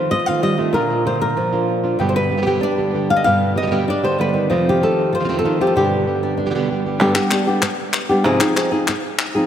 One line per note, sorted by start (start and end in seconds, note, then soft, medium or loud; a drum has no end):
0.00 0.11 D#3 soft
0.00 0.42 F3 medium
0.00 0.12 A3 soft
0.00 0.12 C4 soft
0.00 0.12 F4 soft
0.00 0.43 C5 medium
0.11 0.73 F4 medium
0.11 0.26 D#5 medium
0.11 muted nylon-string guitar stroke soft
0.26 0.59 D#3 soft
0.26 0.58 A3 soft
0.26 0.58 C4 soft
0.26 0.58 F4 soft
0.26 0.42 F5 medium
0.43 0.57 G3 medium
0.43 0.74 D#5 medium
0.58 0.74 D#3 soft
0.58 0.74 A3 medium
0.58 0.74 A3 soft
0.58 0.74 C4 soft
0.58 0.74 F4 soft
0.73 1.97 A#2 medium
0.73 0.89 A#2 medium
0.73 0.89 D3 medium
0.73 0.90 A#3 medium
0.73 0.90 D4 medium
0.73 0.89 F4 medium
0.73 1.06 A#4 medium
0.90 1.05 A#3 soft
0.90 1.05 D4 soft
0.90 1.05 F4 soft
1.05 1.36 D3 soft
1.05 1.36 A#3 soft
1.05 1.36 D4 soft
1.05 1.36 F4 soft
1.05 1.21 C5 medium
1.21 1.99 A#4 medium
1.36 2.00 F3 medium
1.36 muted nylon-string guitar stroke soft
1.53 1.84 A#3 soft
1.53 1.83 D4 soft
1.53 1.82 F4 soft
1.84 2.00 A#3 soft
1.84 1.99 D4 soft
1.84 1.99 F4 soft
1.99 3.25 G2 medium
1.99 2.30 G2 medium
1.99 2.31 B2 medium
1.99 2.31 D3 medium
1.99 2.31 G3 medium
1.99 2.30 B3 medium
1.99 2.30 G4 medium
1.99 2.46 G5 soft
2.09 2.15 C5 medium
2.16 2.63 B4 medium
2.31 2.36 D3 soft
2.31 2.36 G3 soft
2.31 2.37 B3 soft
2.31 2.37 G4 soft
2.37 2.40 B2 soft
2.37 2.41 D3 soft
2.37 2.41 G3 soft
2.37 2.41 B3 soft
2.37 2.42 G4 soft
2.41 2.45 B2 medium
2.41 2.45 D3 soft
2.41 2.46 G3 soft
2.41 2.46 B3 medium
2.41 2.46 G4 medium
2.46 2.62 G2 medium
2.46 2.62 B2 medium
2.46 2.62 D3 medium
2.46 2.62 G3 medium
2.46 2.62 B3 medium
2.46 3.23 G4 soft
2.46 2.62 G4 medium
2.46 3.10 G5 soft
2.61 3.23 D4 medium
2.61 3.16 D5 medium
2.61 muted nylon-string guitar stroke medium
2.78 2.93 D3 soft
2.78 2.94 G3 soft
2.78 2.93 B3 soft
2.78 2.93 G4 soft
2.94 3.24 D3 soft
2.94 3.24 G3 soft
2.94 3.25 B3 soft
2.94 3.25 G4 soft
3.10 3.23 F5 loud
3.16 3.24 D#5 medium
3.24 3.56 G2 medium
3.24 4.51 G2 medium
3.24 3.56 B2 medium
3.24 3.56 D3 medium
3.24 3.56 G3 medium
3.24 3.55 B3 medium
3.24 3.54 G4 medium
3.24 3.88 F5 loud
3.56 3.61 D3 soft
3.56 3.61 G3 soft
3.56 3.61 B3 soft
3.56 3.62 G4 soft
3.56 3.88 D#5 medium
3.62 3.65 B2 soft
3.62 3.66 D3 soft
3.62 3.66 G3 soft
3.62 3.66 B3 soft
3.62 3.66 G4 soft
3.66 3.70 B2 soft
3.66 3.70 D3 medium
3.66 3.71 G3 medium
3.66 3.71 B3 medium
3.66 3.71 G4 medium
3.71 3.86 G2 medium
3.71 3.87 B2 medium
3.71 3.87 D3 medium
3.71 3.87 G3 medium
3.71 3.87 B3 medium
3.71 3.87 G4 medium
3.71 4.49 G4 soft
3.87 4.49 D4 medium
3.87 4.04 D5 medium
3.87 muted nylon-string guitar stroke soft
4.04 4.17 D3 soft
4.04 4.18 G3 soft
4.04 4.18 B3 soft
4.04 4.19 G4 soft
4.04 4.20 C5 medium
4.19 4.33 D3 medium
4.19 4.50 D3 soft
4.19 4.50 G3 soft
4.19 4.50 B3 soft
4.19 4.50 G4 soft
4.19 4.51 B4 medium
4.34 4.50 D#3 medium
4.50 4.81 F2 medium
4.50 4.81 C3 medium
4.50 4.81 D#3 medium
4.50 5.60 F3 medium
4.50 4.81 A3 medium
4.50 4.81 C4 medium
4.50 4.80 F4 medium
4.50 4.66 D#5 soft
4.69 5.15 G4 medium
4.82 5.12 D#3 soft
4.82 5.12 A3 soft
4.82 5.12 C4 soft
4.82 5.12 F4 soft
4.82 5.14 A4 medium
5.12 5.73 F4 medium
5.12 5.37 C5 medium
5.12 muted nylon-string guitar stroke soft
5.20 5.23 C3 soft
5.20 5.24 D#3 soft
5.20 5.23 A3 soft
5.20 5.24 C4 soft
5.20 5.24 F4 soft
5.24 5.28 C3 medium
5.24 5.28 D#3 medium
5.24 5.28 A3 medium
5.24 5.28 C4 medium
5.24 5.28 F4 medium
5.29 5.44 F2 medium
5.29 5.44 C3 medium
5.29 5.42 D#3 medium
5.29 5.43 A3 medium
5.29 5.44 C4 medium
5.29 5.44 F4 medium
5.39 5.66 A4 medium
5.44 5.59 D#3 soft
5.44 5.60 D#3 medium
5.44 5.59 A3 soft
5.44 5.60 C4 soft
5.44 5.60 F4 soft
5.61 5.76 D#3 soft
5.61 5.76 F3 medium
5.61 5.76 A3 soft
5.61 5.75 C4 soft
5.61 5.75 F4 soft
5.61 5.75 G4 medium
5.67 5.76 A4 medium
5.76 6.98 G2 medium
5.76 6.07 G2 medium
5.76 6.07 B2 medium
5.76 6.07 D3 medium
5.76 6.07 G3 medium
5.76 6.07 B3 medium
5.76 6.22 D4 soft
5.76 7.00 G4 medium
5.76 6.06 G4 medium
6.07 6.38 D3 soft
6.07 6.38 G3 soft
6.07 6.38 B3 soft
6.07 6.38 G4 soft
6.23 6.36 D4 soft
6.37 6.98 D4 medium
6.37 muted nylon-string guitar stroke soft
6.46 6.49 B2 soft
6.46 6.49 D3 soft
6.46 6.50 G3 soft
6.46 6.50 B3 soft
6.46 6.50 G4 soft
6.50 6.54 B2 medium
6.50 6.54 D3 medium
6.50 6.54 G3 medium
6.50 6.54 B3 medium
6.50 6.55 G4 medium
6.55 6.69 G2 medium
6.55 6.69 B2 medium
6.55 6.69 D3 medium
6.55 6.70 G3 medium
6.55 6.69 B3 medium
6.55 6.70 G4 medium
6.71 6.85 D3 soft
6.71 6.85 G3 soft
6.71 6.86 B3 soft
6.71 6.85 G4 soft
6.86 7.02 D3 soft
6.86 7.01 G3 soft
6.86 7.01 B3 soft
6.86 7.01 G4 soft
7.00 7.15 G2 medium
7.00 7.15 D3 medium
7.00 7.15 G3 medium
7.00 7.15 B3 medium
7.00 7.14 D4 medium
7.00 7.13 G4 medium
7.14 7.30 G3 soft
7.14 7.30 B3 soft
7.14 7.31 D4 medium
7.14 7.30 G4 medium
7.14 clap medium
7.31 7.46 G3 medium
7.31 7.47 B3 soft
7.31 7.46 D4 medium
7.31 7.46 G4 medium
7.31 clap medium
7.47 7.61 G3 soft
7.47 7.62 B3 medium
7.47 7.62 D4 soft
7.47 7.62 G4 medium
7.62 muted nylon-string guitar stroke medium
7.62 clap medium
7.93 clap medium
8.09 8.24 G3 soft
8.09 8.25 B3 medium
8.09 8.25 D4 medium
8.09 8.24 G4 medium
8.24 8.39 G#2 medium
8.24 8.40 C3 medium
8.24 8.40 F3 medium
8.24 8.39 C4 medium
8.24 8.39 D#4 medium
8.24 8.39 G#4 medium
8.24 clap soft
8.40 8.54 F3 soft
8.40 8.54 C4 medium
8.40 8.55 D#4 medium
8.40 8.55 G#4 medium
8.40 clap medium
8.55 8.71 F3 medium
8.55 8.71 C4 medium
8.55 8.70 D#4 medium
8.55 8.70 G#4 medium
8.55 clap medium
8.71 8.87 F3 soft
8.71 8.87 C4 soft
8.71 8.87 D#4 medium
8.71 8.86 G#4 medium
8.88 muted nylon-string guitar stroke medium
8.88 clap medium
9.19 clap medium
9.35 9.46 F3 soft
9.35 9.46 C4 medium
9.35 9.46 D#4 medium
9.35 9.46 G#4 medium